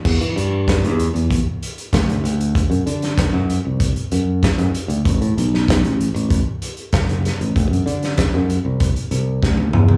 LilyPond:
<<
  \new Staff \with { instrumentName = "Fingered electric bass" } { \clef bass \time 4/4 \key d \mixolydian \tempo 4 = 96 e,16 e16 g,8. e,8 e,8 r8. d,8 d,8~ | d,16 fis,16 d8. fis,8 c,8 r16 fis,8. fis,16 r16 d,16 | a,,16 a,16 b,,8. a,,8 a,,8 r8. fis,,8. a,,16 | d,16 fis,16 d8. fis,8 c,8 r16 c,8 d,8 e,8 | }
  \new DrumStaff \with { instrumentName = "Drums" } \drummode { \time 4/4 <cymc bd>16 hh16 hh8 <hh bd sn>16 hh16 hh16 hh16 <hh bd>8 hh16 hh16 <hh bd sn>16 hh16 hh16 hh16 | <hh bd>16 hh16 hh16 <hh sn>16 <hh bd sn>8 hh8 <hh bd>16 hh16 hh8 <hh bd sn>16 hh16 hh16 hh16 | <hh bd>16 hh16 hh16 sn16 <hh bd sn>16 hh16 hh16 hh16 <hh bd>8 hh16 hh16 <hh bd sn>16 hh16 <hh sn>16 hh16 | <hh bd>16 hh16 hh16 <hh sn>16 <hh bd sn>8 hh8 <hh bd>16 hh16 hh8 <bd sn>16 tommh16 toml16 tomfh16 | }
>>